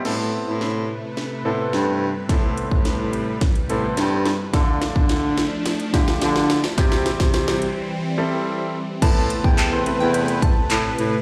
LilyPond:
<<
  \new Staff \with { instrumentName = "Synth pluck" } { \time 4/4 \key a \minor \tempo 4 = 107 r1 | r1 | r1 | r1 |
a''8 r16 g''16 a''16 r8 g''16 r8 a''8. r8. | }
  \new Staff \with { instrumentName = "Grand piano" } { \time 4/4 \key a \minor <b c' e' a'>4. r4 <b c' e' a'>4 r8 | <b c' e' a'>4. r4 <b c' e' a'>4 r8 | <a d' f' a'>4. r4 <a d' f' g'>4 r8 | <g c' e' g'>4. r4 <g c' e' a'>4 r8 |
<b c' e' a' b'>8. r8 <b c' e' a' c''>16 <b c' e' a' b'>4. r4 | }
  \new Staff \with { instrumentName = "Supersaw synth" } { \time 4/4 \key a \minor << { <c b'>1~ | <c b'>1 | <f d'>1 | <e c'>1 |
<c b'>1 | } \\ { a1 | g1 | a1 | g1 |
a1 | } >> }
  \new Staff \with { instrumentName = "Baritone saxophone" } { \clef bass \time 4/4 \key a \minor a,8. a,4~ a,16 r8 a,8 g,4 | a,8. a,4.~ a,16 a,8 g,4 | d8. d4~ d16 r8 d8 d4 | c8. c4~ c16 r2 |
a,8. e,4 e,4~ e,16 a,8 a,8 | }
  \new DrumStaff \with { instrumentName = "Drums" } \drummode { \time 4/4 <cymc sn>4 sn4 sn4 sn4 | <hh bd sn>8 hh16 bd16 <hh sn>8 hh8 <hh bd sn>16 hh16 hh8 <hh sn>8 <hh sn>8 | <hh bd sn>8 <hh sn>16 bd16 <hh sn>8 <hh sn>8 <hh sn>16 hh16 <hh bd sn>16 sn16 <hh sn>16 sn16 <hh sn>16 sn16 | <hh bd sn>16 sn16 <hh sn>16 <bd sn>16 <hh sn>16 sn16 hh8 r4 r4 |
<cymc hh bd>8 hh16 bd16 <hc hh>8 hh8 hh16 hh16 <hh bd>8 <hc hh>8 hh8 | }
>>